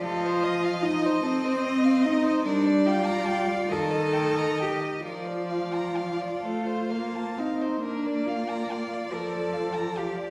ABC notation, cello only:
X:1
M:6/8
L:1/8
Q:3/8=47
K:Bb
V:1 name="Cello"
F2 E C2 E | D F2 A2 G | F4- F E | D F2 A2 G |]